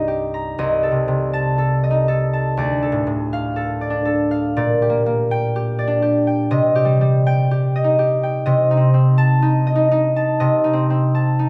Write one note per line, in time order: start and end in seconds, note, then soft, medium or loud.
0.00 0.58 C2 soft
0.00 0.60 G2 soft
0.00 1.89 D#4 soft
0.00 0.57 D#5 soft
0.00 0.33 A#5 medium
0.08 0.61 G4 soft
0.34 0.61 A#5 soft
0.58 2.62 C2 medium
0.58 1.82 D#5 medium
0.83 1.57 A4 soft
0.91 1.07 C3 soft
1.08 2.61 C3 soft
1.33 2.32 A5 medium
1.58 2.07 A4 medium
1.84 2.61 D#5 medium
1.91 2.60 D#4 soft
2.08 2.81 A4 soft
2.33 4.59 A5 soft
2.57 4.59 D2 medium
2.57 3.80 D5 medium
2.83 3.55 A4 soft
2.92 3.05 A2 soft
3.07 4.59 A2 soft
3.33 4.30 F5 medium
3.56 4.04 A4 medium
3.81 4.55 D5 soft
3.90 5.86 D4 medium
4.05 4.59 A4 medium
4.31 4.59 F5 soft
4.57 6.56 A#2 medium
4.57 5.77 D5 medium
4.82 5.55 G4 medium
4.90 5.05 A#3 soft
5.06 6.56 A#3 medium
5.31 6.26 G5 medium
5.56 6.01 G4 medium
5.79 6.55 D5 medium
5.87 6.56 D4 medium
6.02 6.74 G4 soft
6.27 7.25 G5 soft
6.51 8.45 C3 medium
6.51 7.74 D#5 medium
6.76 7.50 G4 medium
6.85 7.00 G3 medium
7.01 8.51 G3 medium
7.27 8.22 G5 medium
7.51 7.98 G4 medium
7.76 8.44 D#5 soft
7.84 8.70 D#4 soft
7.99 8.51 G4 soft
8.23 8.51 G5 soft
8.46 10.39 C3 medium
8.46 9.66 D#5 medium
8.71 9.41 D#4 medium
8.77 8.93 C4 soft
8.94 10.72 C4 medium
9.18 10.15 A5 medium
9.42 9.74 D#4 medium
9.67 10.39 D#5 medium
9.76 9.90 D#4 medium
9.91 10.63 D#4 medium
10.16 11.13 A5 medium
10.40 11.49 C3 medium
10.40 11.49 D#5 medium
10.64 11.38 D#4 medium
10.73 10.89 C4 medium
10.90 11.49 C4 medium
11.15 11.49 A5 medium
11.39 11.49 D#4 medium